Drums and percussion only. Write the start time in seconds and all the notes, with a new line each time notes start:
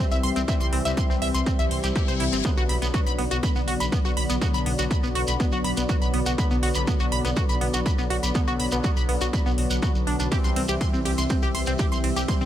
0.11 shekere
0.23 open hi-hat
0.36 closed hi-hat, shekere
0.48 kick, closed hi-hat, shekere
0.60 shekere
0.73 open hi-hat
0.85 closed hi-hat, shekere
0.97 kick, closed hi-hat, shekere
1.11 shekere
1.22 open hi-hat
1.35 closed hi-hat, shekere
1.46 kick, closed hi-hat, shekere
1.59 shekere
1.71 open hi-hat
1.83 closed hi-hat, shekere
1.96 kick, closed hi-hat, shekere
2.09 shekere
2.20 open hi-hat
2.33 closed hi-hat, shekere
2.45 kick, closed hi-hat, shekere
2.57 shekere
2.69 open hi-hat
2.82 closed hi-hat, shekere
2.94 kick, closed hi-hat, shekere
3.07 shekere
3.19 open hi-hat
3.31 closed hi-hat, shekere
3.43 kick, closed hi-hat, shekere
3.56 shekere
3.68 open hi-hat
3.80 closed hi-hat, shekere
3.92 kick, closed hi-hat, shekere
4.05 shekere
4.17 open hi-hat
4.30 closed hi-hat, shekere
4.41 kick, closed hi-hat, shekere
4.54 shekere
4.66 open hi-hat
4.79 closed hi-hat, shekere
4.91 kick, closed hi-hat, shekere
5.03 shekere
5.15 open hi-hat
5.27 closed hi-hat, shekere
5.40 kick, closed hi-hat, shekere
5.52 shekere
5.64 open hi-hat
5.77 closed hi-hat, shekere
5.89 kick, closed hi-hat, shekere
6.02 shekere
6.14 open hi-hat
6.26 closed hi-hat, shekere
6.38 kick, closed hi-hat, shekere
6.50 shekere
6.63 open hi-hat
6.75 closed hi-hat, shekere
6.87 kick, closed hi-hat, shekere
6.99 shekere
7.12 open hi-hat
7.25 closed hi-hat, shekere
7.36 kick, closed hi-hat, shekere
7.49 shekere
7.61 open hi-hat
7.74 closed hi-hat, shekere
7.86 kick, closed hi-hat, shekere
7.98 shekere
8.10 open hi-hat
8.23 closed hi-hat, shekere
8.35 kick, closed hi-hat, shekere
8.47 shekere
8.60 open hi-hat
8.72 closed hi-hat, shekere
8.84 kick, closed hi-hat, shekere
8.97 shekere
9.09 open hi-hat
9.21 closed hi-hat, shekere
9.33 kick, closed hi-hat, shekere
9.46 shekere
9.58 open hi-hat
9.70 closed hi-hat, shekere
9.82 kick, closed hi-hat, shekere
9.95 shekere
10.07 open hi-hat
10.20 closed hi-hat, shekere
10.32 kick, closed hi-hat, ride, shekere
10.44 shekere
10.56 open hi-hat, ride
10.68 closed hi-hat, shekere
10.81 kick, closed hi-hat, ride, shekere
10.94 shekere
11.06 open hi-hat, ride
11.18 closed hi-hat, shekere
11.30 kick, closed hi-hat, ride, shekere
11.42 shekere
11.55 open hi-hat, ride
11.66 closed hi-hat, shekere
11.79 kick, closed hi-hat, ride, shekere
11.92 shekere
12.04 open hi-hat, ride
12.16 closed hi-hat, shekere
12.28 kick, closed hi-hat, ride, shekere
12.41 shekere